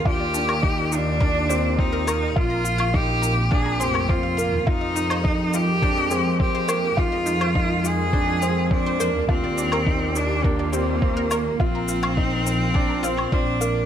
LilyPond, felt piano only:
\new Staff \with { instrumentName = "Felt piano" } { \time 4/4 \key f \dorian \tempo 4 = 104 f'4 ees'4 d'8 c'8 c'8 bes8 | f'4 ees'4 d'8 c'8 c'8 bes8 | f'4 ees'4 d'8 c'8 c'8 bes8 | f'4 ees'4 d'8 c'8 c'8 bes8 |
f'4 ees'4 d'8 c'8 c'8 bes8 | f'4 ees'4 d'8 c'8 c'8 bes8 | }